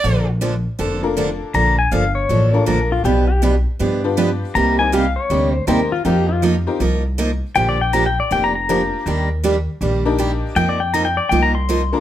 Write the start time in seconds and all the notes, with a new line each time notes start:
Already playing: D5
0.04 A#1 D3 F3 A#3 D4 A4
0.41 D3 F3 A#3 D4 A4
0.79 F1 D3 F3 A#3 D4 A4
1.03 A#3 D4 F4 A4 A#4
1.17 D3 F3 A#3 D4 A4
1.54 A#1 D3 F3 A#3 D4 A4 A#5
1.79 G#5
1.91 G1 D3 F3 A#3 D4 A4 F5
2.15 C#5
2.29 A1 D3 F3 A#3 D4 A4
2.53 A#3 D4 F4 A4 A#4
2.66 A#1 D3 F3 A#3 D4 A4 A#4
2.92 F4
3.04 B1 B2 F3 B3 D4 G4 B4
3.28 G4
3.42 B2 F3 B3 D4 G4 B4
3.79 G2 B2 F3 B3 D4 G4 B4
4.04 B3 D4 F4 G4 B4
4.17 B2 F3 B3 D4 G4 B4
4.55 C2 C3 G3 A#3 D#4 G4 A#5
4.79 A#3 C4 D#4 G4 A#4 G#5
4.92 C3 G3 A#3 D#4 G4 F5
5.16 C#5
5.30 D2 C3 G3 A#3 D#4 G4
5.52 C5
5.67 D#2 C3 G3 A#3 C4 D#4 G4 A#4 C5
5.92 F4
6.05 F2 F3 A#3 C4 D#4 F4 G4 A#4
6.29 F4
6.42 F3 A#3 D#4 F4 A#4
6.67 C4 D#4 F4 G4 A#4
6.80 C2 F3 A#3 D#4 F4 A#4
7.18 F3 A#3 D#4 F4 A#4
7.55 A#1 D3 F3 A#3 D4 G4 G5
7.69 D5
7.81 G5
7.93 D3 F3 A#3 D4 G4 A#5
8.06 G5
8.20 D5
8.31 F1 D3 F3 A#3 D4 G4 G5
8.44 A#5
8.55 A#5
8.69 D3 F3 A#3 D4 F4 G4 A#4
9.06 D#2 D#3 G3 A#3 D4 G4
9.43 D#3 G3 A#3 D4 G4
9.81 A#1 D#3 G3 A#3 D4 G4
10.05 A#3 D4 D#4 G4 A#4
10.18 D#3 G3 A#3 D4 G4
10.56 F2 F3 A#3 D#4 F4 A#4 G5
10.69 D5
10.80 G5
10.94 F3 A#3 D#4 F4 A#4 A#5
11.05 G5
11.17 D5
11.29 C2 F3 A#3 D#4 F4 A#4 G5
11.43 A#5
11.55 C6
11.69 F3 A#3 D#4 F4 A#4
11.92 A#3 D4 F4 A4 A#4